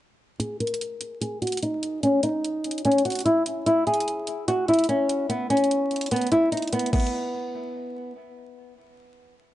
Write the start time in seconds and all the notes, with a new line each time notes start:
0.40 G#4, closed hi-hat
0.60 A#4, closed hi-hat
0.67 closed hi-hat
0.74 closed hi-hat
0.81 closed hi-hat
1.01 closed hi-hat
1.21 G#4, closed hi-hat
1.42 F#4, closed hi-hat
1.47 closed hi-hat
1.52 closed hi-hat
1.57 closed hi-hat
1.62 D#4, closed hi-hat
1.83 closed hi-hat
2.03 C#4, closed hi-hat
2.23 D#4, closed hi-hat
2.45 closed hi-hat
2.64 closed hi-hat
2.71 closed hi-hat
2.78 closed hi-hat
2.85 C#4, closed hi-hat
2.92 closed hi-hat
2.98 closed hi-hat
3.05 F#4, closed hi-hat
3.10 closed hi-hat
3.12 closed hi-hat
3.15 closed hi-hat
3.19 closed hi-hat
3.20 closed hi-hat
3.25 E4, closed hi-hat
3.46 closed hi-hat
3.66 E4, closed hi-hat
3.87 G#4, closed hi-hat
3.94 closed hi-hat
4.00 closed hi-hat
4.08 closed hi-hat
4.27 closed hi-hat
4.48 F#4, closed hi-hat
4.68 E4, closed hi-hat
4.74 closed hi-hat
4.79 closed hi-hat
4.84 closed hi-hat
4.89 C#4, closed hi-hat
5.09 closed hi-hat
5.29 B3, closed hi-hat
5.50 C#4, closed hi-hat
5.57 closed hi-hat
5.64 closed hi-hat
5.71 closed hi-hat
5.91 closed hi-hat
5.96 closed hi-hat
6.01 closed hi-hat
6.06 closed hi-hat
6.11 B3, closed hi-hat
6.16 closed hi-hat
6.22 closed hi-hat
6.27 closed hi-hat
6.32 E4, closed hi-hat
6.52 D#4, closed hi-hat
6.57 closed hi-hat
6.62 closed hi-hat
6.67 closed hi-hat
6.73 B3, closed hi-hat
6.79 closed hi-hat
6.86 closed hi-hat
6.93 B3, kick, closed hi-hat, crash
7.00 closed hi-hat
7.07 closed hi-hat